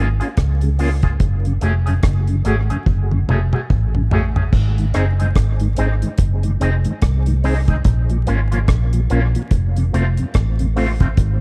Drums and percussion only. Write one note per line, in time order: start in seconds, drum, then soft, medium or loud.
0.21 closed hi-hat soft
0.37 kick loud
0.37 cross-stick medium
0.37 closed hi-hat medium
0.61 closed hi-hat soft
0.79 open hi-hat medium
1.03 kick medium
1.03 closed hi-hat soft
1.20 kick loud
1.20 closed hi-hat medium
1.45 closed hi-hat soft
1.61 closed hi-hat medium
1.87 closed hi-hat medium
2.03 kick loud
2.03 cross-stick loud
2.03 closed hi-hat medium
2.27 closed hi-hat soft
2.45 closed hi-hat medium
2.70 closed hi-hat soft
2.86 kick loud
2.86 high tom medium
3.11 high tom medium
3.29 mid tom medium
3.53 mid tom medium
3.70 kick medium
3.70 mid tom medium
3.95 mid tom medium
4.11 floor tom loud
4.36 floor tom medium
4.53 kick loud
4.53 crash medium
4.78 closed hi-hat soft
4.94 cross-stick medium
4.94 closed hi-hat medium
5.20 closed hi-hat medium
5.35 kick loud
5.35 cross-stick loud
5.35 closed hi-hat medium
5.60 closed hi-hat medium
5.76 closed hi-hat medium
6.02 closed hi-hat medium
6.18 kick loud
6.18 closed hi-hat loud
6.43 closed hi-hat medium
6.61 closed hi-hat medium
6.85 closed hi-hat medium
7.02 kick loud
7.02 cross-stick loud
7.02 closed hi-hat medium
7.26 closed hi-hat medium
7.44 open hi-hat medium
7.68 kick medium
7.68 closed hi-hat soft
7.84 kick loud
7.84 closed hi-hat medium
8.10 closed hi-hat soft
8.27 closed hi-hat medium
8.52 closed hi-hat medium
8.68 kick loud
8.68 cross-stick loud
8.68 closed hi-hat loud
8.93 closed hi-hat medium
9.10 closed hi-hat medium
9.35 closed hi-hat medium
9.51 kick loud
9.51 closed hi-hat medium
9.76 closed hi-hat medium
9.94 closed hi-hat medium
10.17 closed hi-hat soft
10.34 kick loud
10.34 cross-stick loud
10.34 closed hi-hat medium
10.59 closed hi-hat soft
10.77 open hi-hat medium
11.00 kick medium
11.00 closed hi-hat medium
11.17 kick loud
11.17 closed hi-hat medium